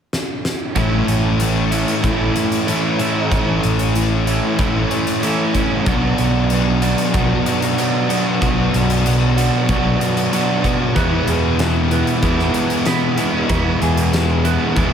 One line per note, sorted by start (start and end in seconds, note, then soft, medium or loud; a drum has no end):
0.13 snare medium
0.45 snare medium
0.76 1.01 A1 medium
0.76 1.39 A2 medium
0.76 2.03 A2 medium
0.76 2.03 E3 medium
0.76 1.41 E3 medium
0.76 1.73 A3 medium
0.76 1.42 A3 loud
0.76 1.72 C#4 medium
0.76 1.71 E4 loud
0.76 kick loud
0.76 closed hi-hat medium
1.08 1.83 A1 medium
1.08 closed hi-hat medium
1.40 2.03 A2 medium
1.40 2.04 E3 medium
1.40 2.05 A3 medium
1.40 closed hi-hat medium
1.71 2.03 A3 soft
1.71 2.05 C#4 medium
1.71 2.04 E4 medium
1.71 closed hi-hat medium
1.88 closed hi-hat medium
2.03 2.29 A1 medium
2.03 2.99 A2 medium
2.03 2.66 A2 medium
2.03 2.66 E3 medium
2.03 2.37 E3 medium
2.03 2.67 A3 medium
2.03 2.34 A3 medium
2.03 2.68 C#4 medium
2.03 2.68 E4 loud
2.03 kick loud
2.03 closed hi-hat medium
2.35 2.67 E3 medium
2.35 2.69 A3 medium
2.35 closed hi-hat medium
2.52 closed hi-hat medium
2.67 3.30 A2 medium
2.67 3.30 E3 medium
2.67 3.00 E3 medium
2.67 3.00 A3 medium
2.67 2.98 A3 medium
2.67 3.00 C#4 medium
2.67 2.98 E4 medium
2.67 closed hi-hat medium
2.99 3.31 E3 medium
2.99 3.32 A3 medium
2.99 3.31 A3 medium
2.99 3.32 C#4 medium
2.99 3.32 E4 medium
2.99 closed hi-hat medium
3.31 3.57 A1 medium
3.31 4.57 A2 medium
3.31 3.93 A2 medium
3.31 4.58 E3 medium
3.31 3.95 E3 loud
3.31 4.27 A3 medium
3.31 3.96 A3 loud
3.31 4.27 C#4 medium
3.31 4.25 E4 loud
3.31 kick loud
3.31 closed hi-hat medium
3.63 4.39 A1 medium
3.63 closed hi-hat medium
3.79 closed hi-hat medium
3.94 4.57 A2 medium
3.94 4.59 E3 medium
3.94 4.60 A3 medium
3.94 closed hi-hat medium
4.26 4.58 A3 soft
4.26 4.60 C#4 medium
4.26 4.59 E4 medium
4.26 closed hi-hat medium
4.58 4.84 A1 medium
4.58 5.55 A2 medium
4.58 5.21 A2 medium
4.58 5.22 E3 medium
4.58 4.92 E3 medium
4.58 5.22 A3 medium
4.58 4.89 A3 medium
4.58 5.24 C#4 medium
4.58 5.24 E4 medium
4.58 kick medium
4.58 closed hi-hat medium
4.91 5.23 E3 medium
4.91 5.24 A3 medium
4.91 closed hi-hat medium
5.07 closed hi-hat medium
5.23 5.85 A2 medium
5.23 5.85 E3 medium
5.23 5.56 E3 medium
5.23 5.55 A3 medium
5.23 5.54 A3 medium
5.23 5.55 C#4 medium
5.23 5.53 E4 medium
5.23 closed hi-hat medium
5.54 5.86 E3 medium
5.54 5.85 A3 medium
5.54 5.86 A3 medium
5.54 5.87 C#4 medium
5.54 5.85 E4 medium
5.54 kick medium
5.54 closed hi-hat medium
5.86 6.12 B1 medium
5.86 6.49 B2 medium
5.86 7.13 B2 medium
5.86 7.13 F#3 medium
5.86 6.51 F#3 loud
5.86 6.83 B3 medium
5.86 6.52 B3 loud
5.86 6.82 D4 loud
5.86 6.81 F#4 medium
5.86 kick loud
5.86 closed hi-hat medium
6.18 6.94 B1 medium
6.18 closed hi-hat medium
6.50 7.13 B2 medium
6.50 7.15 F#3 medium
6.50 7.16 B3 medium
6.50 closed hi-hat medium
6.82 7.14 B3 soft
6.82 7.14 D4 medium
6.82 7.15 F#4 medium
6.82 closed hi-hat medium
6.98 closed hi-hat medium
7.13 7.39 B1 medium
7.13 8.10 B2 medium
7.13 7.76 B2 medium
7.13 7.77 F#3 loud
7.13 7.48 F#3 medium
7.13 7.78 B3 medium
7.13 7.45 B3 medium
7.13 7.78 D4 medium
7.13 7.79 F#4 medium
7.13 kick medium
7.13 closed hi-hat medium
7.46 7.78 F#3 medium
7.46 7.79 B3 medium
7.46 closed hi-hat medium
7.62 closed hi-hat medium
7.77 8.39 B2 medium
7.77 8.41 F#3 medium
7.77 8.11 F#3 medium
7.77 8.11 B3 medium
7.77 8.08 B3 medium
7.77 8.09 D4 medium
7.77 8.09 F#4 medium
7.77 closed hi-hat medium
8.08 8.41 F#3 medium
8.08 8.43 B3 medium
8.08 8.41 B3 medium
8.08 8.41 D4 medium
8.08 8.43 F#4 medium
8.08 closed hi-hat medium
8.40 8.67 B1 medium
8.40 9.03 B2 medium
8.40 9.68 B2 medium
8.40 9.69 F#3 medium
8.40 9.05 F#3 loud
8.40 9.39 B3 medium
8.40 9.06 B3 medium
8.40 9.37 D4 medium
8.40 9.37 F#4 medium
8.40 kick loud
8.40 closed hi-hat medium
8.74 9.48 B1 medium
8.74 closed hi-hat medium
8.90 closed hi-hat medium
9.04 9.67 B2 medium
9.04 9.69 F#3 medium
9.04 9.70 B3 medium
9.04 closed hi-hat medium
9.37 9.69 B3 medium
9.37 9.69 D4 medium
9.37 9.71 F#4 medium
9.37 closed hi-hat medium
9.68 9.94 B1 medium
9.68 10.31 B2 medium
9.68 10.64 B2 medium
9.68 10.32 F#3 medium
9.68 10.02 F#3 medium
9.68 10.33 B3 loud
9.68 9.99 B3 medium
9.68 10.33 D4 medium
9.68 10.34 F#4 medium
9.68 kick loud
9.68 closed hi-hat medium
9.99 10.33 F#3 medium
9.99 10.34 B3 medium
9.99 closed hi-hat medium
10.17 closed hi-hat medium
10.32 10.94 B2 medium
10.32 10.96 F#3 medium
10.32 10.66 F#3 medium
10.32 10.66 B3 medium
10.32 10.63 B3 medium
10.32 10.64 D4 medium
10.32 10.64 F#4 medium
10.32 closed hi-hat medium
10.64 10.98 F#3 medium
10.64 14.14 B3 medium
10.64 10.97 B3 medium
10.64 10.95 D4 medium
10.64 10.97 F#4 medium
10.64 kick medium
10.64 closed hi-hat medium
10.96 11.59 E2 medium
10.96 11.21 E2 medium
10.96 11.59 B2 loud
10.96 12.23 E3 medium
10.96 11.61 E3 loud
10.96 11.93 G#3 loud
10.96 11.92 B3 medium
10.96 11.91 E4 loud
10.96 11.91 B4 medium
10.96 kick loud
10.96 closed hi-hat medium
11.27 12.02 E2 medium
11.27 13.82 G#4 medium
11.27 closed hi-hat medium
11.59 12.21 E2 medium
11.59 12.23 B2 medium
11.59 12.24 E3 medium
11.59 snare loud
11.59 closed hi-hat medium
11.91 12.23 G#3 medium
11.91 12.24 B3 medium
11.91 12.24 E4 medium
11.91 12.86 B4 medium
11.91 closed hi-hat medium
12.07 closed hi-hat medium
12.22 12.84 E2 medium
12.22 12.47 E2 medium
12.22 12.56 B2 medium
12.22 12.85 E3 medium
12.22 12.53 E3 medium
12.22 12.86 G#3 medium
12.22 12.87 B3 medium
12.22 12.87 E4 medium
12.22 kick medium
12.22 closed hi-hat medium
12.40 snare soft
12.54 12.86 B2 medium
12.54 12.88 E3 medium
12.54 closed hi-hat medium
12.70 closed hi-hat medium
12.86 13.47 E2 medium
12.86 13.19 B2 medium
12.86 13.48 E3 medium
12.86 13.16 E3 medium
12.86 13.19 G#3 medium
12.86 13.19 B3 medium
12.86 13.17 E4 medium
12.86 13.49 B4 medium
12.86 snare loud
12.86 closed hi-hat medium
13.18 13.49 B2 medium
13.18 13.50 E3 medium
13.18 13.50 G#3 medium
13.18 13.50 B3 medium
13.18 13.50 E4 medium
13.18 closed hi-hat medium
13.48 14.12 E2 medium
13.48 13.74 E2 medium
13.48 14.13 B2 loud
13.48 14.75 E3 medium
13.48 14.15 E3 loud
13.48 14.46 G#3 medium
13.48 14.45 B3 medium
13.48 14.43 E4 loud
13.48 13.81 B4 medium
13.48 kick loud
13.48 closed hi-hat medium
13.82 14.56 E2 medium
13.82 14.93 G#4 medium
13.82 closed hi-hat medium
13.98 closed hi-hat medium
14.13 14.75 E2 medium
14.13 14.77 B2 medium
14.13 14.78 E3 medium
14.13 snare loud
14.13 closed hi-hat medium
14.44 14.77 G#3 medium
14.44 14.77 B3 medium
14.44 14.77 E4 medium
14.44 14.93 B4 medium
14.44 closed hi-hat medium
14.76 14.93 E2 medium
14.76 14.93 B2 medium
14.76 14.93 E3 medium
14.76 14.93 G#3 loud
14.76 14.93 B3 loud
14.76 14.93 E4 loud
14.76 kick loud
14.76 closed hi-hat medium